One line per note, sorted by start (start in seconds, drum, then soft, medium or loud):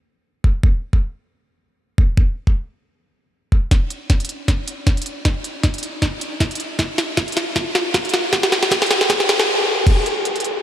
0.44 kick medium
0.63 kick loud
0.93 kick medium
1.98 kick loud
2.17 kick loud
2.47 kick medium
3.52 kick medium
3.71 kick medium
3.71 snare soft
3.71 closed hi-hat medium
3.90 closed hi-hat medium
4.10 kick medium
4.10 snare soft
4.10 closed hi-hat medium
4.20 closed hi-hat soft
4.25 closed hi-hat medium
4.29 closed hi-hat medium
4.48 kick medium
4.48 snare soft
4.48 closed hi-hat medium
4.68 closed hi-hat medium
4.87 kick medium
4.87 snare medium
4.87 closed hi-hat medium
4.97 closed hi-hat medium
5.02 closed hi-hat medium
5.06 closed hi-hat medium
5.25 kick medium
5.25 snare medium
5.25 closed hi-hat medium
5.44 closed hi-hat medium
5.63 kick loud
5.63 snare medium
5.63 closed hi-hat medium
5.74 closed hi-hat soft
5.78 closed hi-hat medium
5.83 closed hi-hat medium
6.02 kick medium
6.02 snare medium
6.02 closed hi-hat medium
6.21 closed hi-hat medium
6.40 kick loud
6.40 snare medium
6.40 closed hi-hat medium
6.51 closed hi-hat soft
6.55 closed hi-hat medium
6.60 closed hi-hat medium
6.79 kick loud
6.79 snare medium
6.79 closed hi-hat medium
6.98 snare medium
6.98 closed hi-hat medium
7.17 kick medium
7.17 snare medium
7.17 closed hi-hat medium
7.28 closed hi-hat soft
7.32 closed hi-hat medium
7.37 snare medium
7.37 closed hi-hat medium
7.56 kick loud
7.56 snare medium
7.56 closed hi-hat medium
7.75 snare medium
7.75 closed hi-hat medium
7.94 kick medium
7.94 snare medium
7.94 closed hi-hat medium
8.05 closed hi-hat soft
8.09 closed hi-hat medium
8.14 snare medium
8.14 closed hi-hat medium
8.33 kick loud
8.33 snare medium
8.33 closed hi-hat medium
8.43 snare medium
8.52 snare medium
8.52 closed hi-hat medium
8.63 snare medium
8.71 kick loud
8.71 snare medium
8.71 closed hi-hat medium
8.82 snare medium
8.82 closed hi-hat soft
8.86 closed hi-hat medium
8.91 snare loud
8.91 closed hi-hat medium
9.01 snare medium
9.10 kick medium
9.10 snare loud
9.10 closed hi-hat medium
9.20 snare medium
9.29 snare loud
9.29 closed hi-hat medium
9.39 snare medium
9.87 kick loud
9.87 closed hi-hat medium
9.87 crash loud
10.06 closed hi-hat medium
10.25 closed hi-hat medium
10.36 closed hi-hat soft
10.40 closed hi-hat medium
10.44 closed hi-hat medium